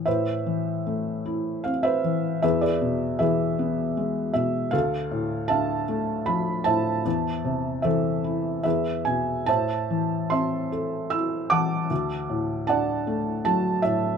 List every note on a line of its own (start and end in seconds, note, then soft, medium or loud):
0.06 2.40 A2 medium
0.06 1.61 B4 soft
0.06 1.62 C5 soft
0.06 1.70 E5 medium
0.46 2.00 E3 soft
0.87 2.39 A3 soft
1.25 2.39 E4 soft
1.64 2.41 C4 soft
1.64 1.83 F5 medium
1.83 2.39 B4 soft
1.83 2.39 C5 soft
1.83 2.41 E5 medium
2.04 2.42 E3 soft
2.42 4.69 E2 medium
2.42 2.61 G#4 medium
2.42 2.61 B4 soft
2.42 2.63 E5 medium
2.61 3.18 G#4 soft
2.61 3.18 B4 soft
2.61 3.22 D5 medium
2.81 4.31 B2 soft
3.19 4.69 E3 soft
3.19 4.31 G#4 medium
3.19 4.31 B4 soft
3.19 4.31 E5 medium
3.59 4.70 B3 soft
3.97 4.71 G#3 soft
4.33 4.72 B2 soft
4.33 4.74 E5 medium
4.71 7.01 D2 medium
4.71 5.84 A4 medium
4.71 5.49 F5 medium
5.11 6.62 A2 soft
5.48 7.01 D3 medium
5.48 6.62 E5 soft
5.48 6.62 F5 medium
5.48 6.22 A5 medium
5.88 7.02 A3 soft
6.26 7.03 F3 soft
6.26 6.67 B5 medium
6.64 7.04 A2 soft
6.64 7.80 C5 medium
6.64 7.81 E5 soft
6.64 7.87 A5 medium
7.05 8.61 E2 medium
7.45 8.62 C3 soft
7.82 8.63 E3 soft
7.82 8.61 A4 soft
7.82 8.61 C5 soft
7.82 8.60 E5 medium
8.24 8.64 E4 soft
8.63 9.45 E2 soft
8.63 9.44 G#4 soft
8.63 9.44 B4 soft
8.63 9.02 E5 medium
9.05 9.47 B2 soft
9.05 9.44 G#5 medium
9.46 11.87 A2 medium
9.46 10.68 C5 medium
9.46 10.30 E5 medium
9.46 10.33 A5 medium
9.90 11.47 E3 soft
10.30 11.86 C4 soft
10.30 11.47 E5 medium
10.30 11.13 C6 medium
10.72 11.87 A4 soft
11.10 11.88 E4 soft
11.10 11.48 E6 medium
11.50 11.89 E3 soft
11.50 12.65 F#5 medium
11.50 12.65 A5 medium
11.50 12.64 D6 medium
11.90 14.17 D2 medium
12.29 13.80 A2 soft
12.67 14.17 D3 soft
12.67 13.81 D5 medium
12.67 13.81 F#5 medium
12.67 13.41 A5 medium
13.07 14.17 A3 soft
13.45 14.17 F#3 soft
13.45 13.81 A5 medium
13.82 14.17 A2 soft
13.82 14.17 E5 medium